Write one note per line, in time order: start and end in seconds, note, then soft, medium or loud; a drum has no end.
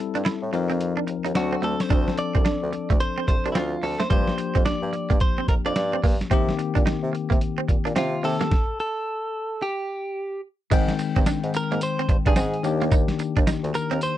0.00 0.53 G3 medium
0.00 0.52 C4 medium
0.00 0.53 E4 medium
0.00 0.53 A4 medium
0.15 0.23 G2 medium
0.15 0.21 D4 medium
0.15 closed hi-hat medium
0.25 0.35 E4 medium
0.25 snare loud
0.25 closed hi-hat medium
0.42 0.50 A2 medium
0.53 0.95 F2 loud
0.53 1.36 F3 medium
0.53 1.34 C4 medium
0.53 1.36 D#4 medium
0.53 1.36 A#4 medium
0.53 muted clean electric guitar stroke soft
0.53 closed hi-hat medium
0.70 0.76 C4 medium
0.70 closed hi-hat soft
0.81 closed hi-hat medium
0.97 1.03 D4 medium
1.07 1.15 D#2 soft
1.07 muted clean electric guitar stroke soft
1.07 closed hi-hat medium
1.25 1.33 D#2 medium
1.25 1.31 D#4 medium
1.25 closed hi-hat medium
1.35 1.56 D2 loud
1.35 1.90 F#3 medium
1.35 1.89 C4 medium
1.35 1.89 D4 medium
1.35 1.64 F#4 medium
1.35 1.90 A4 medium
1.35 muted clean electric guitar stroke soft
1.35 snare loud
1.35 closed hi-hat medium
1.53 1.59 C4 medium
1.62 1.76 D2 medium
1.62 1.73 A3 medium
1.62 1.81 A4 medium
1.62 closed hi-hat medium
1.80 2.18 C5 medium
1.80 snare medium
1.80 closed hi-hat medium
1.89 2.11 D2 loud
1.89 4.06 F3 medium
1.89 4.06 C4 medium
1.89 2.01 D4 medium
1.89 4.07 D4 medium
1.89 4.07 A4 medium
1.89 kick loud
1.89 closed hi-hat medium
2.08 snare medium
2.17 3.00 D5 loud
2.17 muted clean electric guitar stroke soft
2.17 closed hi-hat medium
2.35 2.43 C2 medium
2.35 2.41 C4 medium
2.35 kick medium
2.35 closed hi-hat soft
2.45 2.55 D4 medium
2.45 snare loud
2.45 closed hi-hat medium
2.63 2.71 D2 medium
2.73 muted clean electric guitar stroke soft
2.73 closed hi-hat medium
2.90 2.98 D2 medium
2.90 2.96 A3 medium
2.90 kick loud
2.90 closed hi-hat soft
3.00 3.27 C5 loud
3.00 closed hi-hat medium
3.18 3.24 C4 medium
3.28 3.35 C2 soft
3.28 3.51 C5 loud
3.28 muted clean electric guitar stroke soft
3.28 kick medium
3.28 closed hi-hat medium
3.45 3.53 C2 medium
3.45 3.52 D4 medium
3.45 closed hi-hat medium
3.52 3.76 D2 loud
3.52 3.65 C4 medium
3.52 3.56 E4 medium
3.52 3.84 F4 medium
3.52 snare loud
3.52 closed hi-hat medium
3.83 3.96 D2 medium
3.83 4.01 A4 medium
3.83 muted clean electric guitar stroke soft
3.83 open hi-hat medium
4.00 4.06 A3 medium
4.00 4.09 C5 medium
4.00 snare medium
4.00 closed hi-hat medium
4.10 4.32 G2 loud
4.10 6.27 F3 medium
4.10 4.21 G3 medium
4.10 6.27 A#3 medium
4.10 6.27 D4 medium
4.10 6.28 G4 medium
4.10 4.65 C5 loud
4.10 kick loud
4.10 closed hi-hat medium
4.28 snare medium
4.38 muted clean electric guitar stroke soft
4.38 closed hi-hat medium
4.55 4.63 F2 medium
4.55 4.61 C4 medium
4.55 kick medium
4.55 closed hi-hat medium
4.66 4.76 D4 medium
4.66 5.21 D5 medium
4.66 snare loud
4.66 closed hi-hat medium
4.82 4.90 G2 medium
4.93 muted clean electric guitar stroke soft
4.93 closed hi-hat medium
5.10 5.18 G2 medium
5.10 5.16 A#3 medium
5.10 kick loud
5.10 closed hi-hat soft
5.20 5.48 C5 medium
5.20 kick loud
5.20 closed hi-hat medium
5.38 5.44 C4 medium
5.48 5.55 F2 soft
5.48 5.54 A#4 medium
5.48 muted clean electric guitar stroke soft
5.48 kick medium
5.48 closed hi-hat medium
5.65 5.73 F2 medium
5.65 5.72 D4 medium
5.65 6.01 D5 medium
5.65 closed hi-hat medium
5.76 5.97 G2 loud
5.76 muted clean electric guitar stroke soft
5.76 snare loud
5.76 closed hi-hat medium
5.93 5.99 C4 medium
6.03 6.16 G2 medium
6.03 6.14 A#3 medium
6.03 kick loud
6.03 open hi-hat medium
6.21 snare medium
6.21 closed hi-hat medium
6.30 6.52 C3 loud
6.30 8.19 D#3 medium
6.30 8.20 A#3 medium
6.30 6.41 C4 medium
6.30 8.20 C4 medium
6.30 8.21 G4 medium
6.30 kick loud
6.30 closed hi-hat medium
6.49 snare medium
6.59 muted clean electric guitar stroke soft
6.59 closed hi-hat medium
6.75 6.84 A#2 medium
6.75 6.81 D4 medium
6.75 kick medium
6.75 closed hi-hat medium
6.86 6.96 D#4 medium
6.86 snare loud
6.86 closed hi-hat medium
7.03 7.11 C3 loud
7.13 muted clean electric guitar stroke soft
7.13 closed hi-hat medium
7.30 7.39 C3 medium
7.30 7.36 A#3 medium
7.30 kick loud
7.30 closed hi-hat medium
7.41 closed hi-hat medium
7.58 7.64 C4 medium
7.68 7.76 A#2 soft
7.68 muted clean electric guitar stroke soft
7.68 kick medium
7.68 closed hi-hat medium
7.85 7.93 A#2 medium
7.85 7.91 D4 medium
7.85 closed hi-hat medium
7.96 8.17 C3 loud
7.96 8.06 C4 medium
7.96 8.25 F4 medium
7.96 snare loud
7.96 closed hi-hat medium
8.23 8.37 C3 loud
8.23 8.51 D#3 medium
8.23 8.51 A#3 soft
8.23 8.51 C4 soft
8.23 8.51 G4 medium
8.23 8.79 A4 loud
8.23 muted clean electric guitar stroke soft
8.23 open hi-hat medium
8.41 8.47 A#3 medium
8.41 snare medium
8.41 closed hi-hat medium
8.51 kick loud
8.51 snare loud
8.80 9.64 A4 loud
9.62 10.40 G4 medium
10.71 10.92 G#2 loud
10.71 12.60 D#3 medium
10.71 10.82 G#3 medium
10.71 12.60 G#3 medium
10.71 12.61 C4 medium
10.71 12.61 G5 medium
10.71 kick loud
10.71 closed hi-hat medium
10.71 crash loud
10.71 tambourine medium
10.88 snare medium
10.88 closed hi-hat medium
10.99 muted clean electric guitar stroke soft
10.99 closed hi-hat medium
10.99 tambourine medium
11.16 11.24 G2 medium
11.16 11.22 C4 medium
11.16 kick medium
11.16 closed hi-hat medium
11.26 11.37 D4 medium
11.26 snare loud
11.26 closed hi-hat medium
11.26 tambourine loud
11.43 11.51 G#2 medium
11.43 closed hi-hat medium
11.54 11.83 A#4 loud
11.54 muted clean electric guitar stroke soft
11.54 closed hi-hat medium
11.54 tambourine medium
11.71 11.79 G#2 medium
11.71 11.78 A#3 medium
11.71 closed hi-hat medium
11.81 12.16 C5 loud
11.81 closed hi-hat medium
11.81 tambourine medium
11.99 12.05 C4 medium
11.99 closed hi-hat medium
12.09 12.16 G2 soft
12.09 muted clean electric guitar stroke soft
12.09 kick medium
12.09 closed hi-hat medium
12.26 12.34 G2 medium
12.26 12.33 D4 medium
12.26 12.62 G#4 medium
12.26 kick loud
12.26 closed hi-hat medium
12.36 12.57 G#2 loud
12.36 12.47 C4 medium
12.36 snare loud
12.36 closed hi-hat medium
12.36 tambourine loud
12.54 closed hi-hat medium
12.63 13.06 D#2 loud
12.63 14.18 D#3 medium
12.63 14.18 A#3 medium
12.63 14.18 D4 medium
12.63 14.18 G4 medium
12.63 muted clean electric guitar stroke soft
12.63 closed hi-hat medium
12.63 tambourine medium
12.81 12.88 A#3 medium
12.81 closed hi-hat medium
12.91 13.02 D#4 loud
12.91 kick loud
12.91 closed hi-hat medium
12.91 tambourine medium
13.08 snare medium
13.08 closed hi-hat medium
13.19 muted clean electric guitar stroke soft
13.19 closed hi-hat medium
13.19 tambourine medium
13.36 13.44 D#2 medium
13.36 13.43 D4 medium
13.36 kick medium
13.36 closed hi-hat medium
13.47 13.57 D#4 medium
13.47 snare loud
13.47 closed hi-hat medium
13.47 tambourine medium
13.63 13.71 D2 medium
13.63 closed hi-hat medium
13.74 14.03 A#4 loud
13.74 muted clean electric guitar stroke soft
13.74 closed hi-hat medium
13.74 tambourine medium
13.91 13.99 D#2 medium
13.91 13.97 C4 medium
13.91 closed hi-hat medium
14.01 14.18 C5 loud
14.01 closed hi-hat medium
14.01 tambourine medium